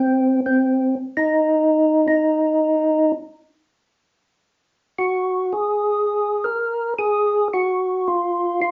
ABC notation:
X:1
M:4/4
L:1/8
Q:"Swing" 1/4=110
K:Abmix
V:1 name="Tonewheel organ"
C C2 z E3 E- | E3 z4 z | z2 G2 A3 B- | B A2 G2 F2 F |]